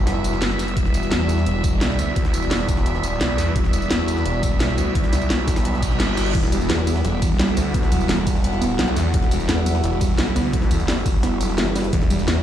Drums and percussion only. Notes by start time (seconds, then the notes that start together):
0.07 cross-stick, snare, closed hi-hat
0.24 closed hi-hat, tambourine
0.33 snare
0.42 snare, closed hi-hat
0.51 snare
0.59 snare, closed hi-hat, tambourine
0.68 closed hi-hat
0.77 kick, closed hi-hat
0.85 snare
0.94 closed hi-hat, tambourine
1.03 tambourine
1.12 snare, closed hi-hat
1.20 cross-stick
1.29 closed hi-hat, tambourine
1.38 snare
1.46 closed hi-hat
1.64 kick, closed hi-hat, tambourine
1.81 snare, closed hi-hat
1.90 snare
1.99 cross-stick, closed hi-hat, tambourine
2.16 kick, closed hi-hat
2.25 snare
2.34 closed hi-hat, tambourine
2.42 tambourine
2.51 snare, closed hi-hat, open hi-hat
2.60 cross-stick
2.69 kick, closed hi-hat, tambourine
2.77 snare
2.86 closed hi-hat
2.95 snare
3.03 closed hi-hat, tambourine
3.21 snare, closed hi-hat
3.38 snare, closed hi-hat, tambourine
3.56 kick, closed hi-hat
3.64 snare
3.73 closed hi-hat, tambourine
3.82 tambourine
3.91 snare, closed hi-hat
3.99 cross-stick
4.08 closed hi-hat, tambourine
4.17 snare
4.25 closed hi-hat
4.43 kick, closed hi-hat, tambourine
4.60 snare, closed hi-hat
4.69 snare
4.78 cross-stick, closed hi-hat, tambourine
4.95 kick, closed hi-hat
5.04 snare
5.13 snare, closed hi-hat, tambourine
5.21 tambourine
5.30 snare, closed hi-hat
5.39 cross-stick
5.48 kick, snare, closed hi-hat, tambourine
5.56 snare, closed hi-hat, tambourine
5.65 cross-stick, closed hi-hat
5.74 snare
5.82 kick, closed hi-hat, tambourine
5.91 snare
6.00 snare, closed hi-hat
6.09 cross-stick
6.17 snare, closed hi-hat, tambourine
6.26 tambourine
6.35 kick, closed hi-hat, crash
6.43 snare
6.52 closed hi-hat, ride, tambourine
6.61 tambourine
6.70 snare, closed hi-hat
6.78 cross-stick
6.87 closed hi-hat, ride, tambourine
6.96 snare
7.05 closed hi-hat
7.22 kick, closed hi-hat, ride, tambourine
7.39 snare, closed hi-hat
7.48 snare
7.57 cross-stick, closed hi-hat, ride, tambourine
7.74 kick, closed hi-hat
7.83 snare
7.92 closed hi-hat, ride, tambourine
8.01 tambourine
8.09 snare, closed hi-hat, open hi-hat
8.18 cross-stick
8.27 kick, closed hi-hat, ride, tambourine
8.35 snare
8.44 closed hi-hat
8.53 snare
8.62 closed hi-hat, ride, tambourine
8.79 snare, closed hi-hat
8.96 snare, closed hi-hat, ride, tambourine
9.14 kick, closed hi-hat
9.23 snare
9.31 closed hi-hat, ride, tambourine
9.40 tambourine
9.49 snare, closed hi-hat
9.58 cross-stick
9.66 closed hi-hat, ride, tambourine
9.75 snare
9.84 closed hi-hat
10.01 kick, closed hi-hat, ride, tambourine
10.19 snare, closed hi-hat
10.27 snare
10.36 cross-stick, closed hi-hat, ride, tambourine
10.53 kick, closed hi-hat
10.62 snare
10.71 closed hi-hat, ride, tambourine
10.80 tambourine
10.88 snare, closed hi-hat, open hi-hat
10.97 cross-stick
11.06 kick, closed hi-hat, ride, tambourine
11.23 cross-stick, snare, closed hi-hat
11.41 closed hi-hat, ride, tambourine
11.49 snare
11.58 snare, closed hi-hat
11.67 snare
11.76 snare, closed hi-hat, ride, tambourine
11.84 closed hi-hat
11.93 kick, closed hi-hat
12.02 snare
12.10 closed hi-hat, ride, tambourine
12.19 tambourine
12.28 snare, closed hi-hat
12.37 cross-stick